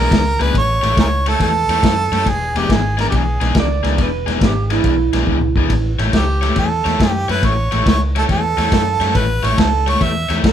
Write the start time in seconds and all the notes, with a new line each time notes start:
Already playing: E3 B3 D4 G#4 A#4
0.11 C#2, kick, snare, ride
0.40 C#2 E3 B3 D4 G#4 B4, snare, ride
0.54 A1 C#5, kick, snare, ride
0.82 A1 A3 E4 G4 C#5, snare, ride
0.97 C#2 G#4 A#4 C#5, kick, snare, ride
1.26 A3 E4 G4 A4 C#5, snare, ride
1.40 E2 A4, kick, snare, ride
1.68 E2 A3 E4 G4 C#5, snare, ride
1.83 F#2, kick, snare, ride
2.12 F#2 A3 E4 G4 C#5, snare, ride
2.26 E1 G#4, kick, snare, ride
2.55 E1 E3 B3 D4 G4 G#4, snare, ride
2.69 G#1 G#4, kick, snare, ride
2.97 E3 B3 D4 G#4 A#4, snare, ride
3.10 B1 G4, kick, snare, ride
3.16 G#4
3.41 B1 E3 B3 D4 G#4, snare, ride
3.55 C#2, kick, snare, ride
3.60 D5
3.83 C#2 E3 B3 D4 G#4, snare, ride
3.98 E1, kick, snare, ride
4.03 B4
4.26 E1 E3 B3 D4 G#4, snare, ride
4.41 G#1 G4, kick, snare, ride
4.70 E3 B3 D4 E4 G#4, snare, ride
4.84 B1, kick, snare, ride
5.13 B1 E3 B3 D4 G#4, snare, ride
5.27 C#2, kick
5.41 mid tom
5.56 C#2 E3 B3 D4 G#4, kick
5.70 A1, kick, snare, ride
5.99 A1 A3 E4 G4 C#5, snare, ride
6.13 C#2 G4, kick, snare, ride
6.42 A3 E4 G4 C#5, snare, ride
6.56 E2 A4, kick, snare, ride
6.85 E2 A3 E4 G4 C#5, snare, ride
7.00 F#2, kick, snare, ride
7.10 G4
7.28 F#2 A3 E4 G4 B4 C#5, snare, ride
7.43 A1 C#5, kick, snare, ride
7.71 A1 A3 E4 G4 C#5, snare, ride
7.86 C#2 C#5, kick, snare, ride
8.16 A3 E4 G4 A4 C#5, snare, ride
8.29 E2 A4, kick, snare, ride
8.57 E2 A3 E4 G4 C#5, snare, ride
8.72 F#2, kick, snare, ride
9.00 F#2 A3 E4 G4 C#5, snare, ride
9.15 A1 B4, kick, snare, ride
9.43 A1 A3 E4 G4 C#5, snare, ride
9.58 C#2 A4, kick, snare, ride
9.87 A3 E4 G4 C#5, snare, ride
10.01 E2 E5, kick, snare, ride
10.29 E2 A3 E4 G4 C#5, snare, ride
10.44 F#2 B4, kick, snare, ride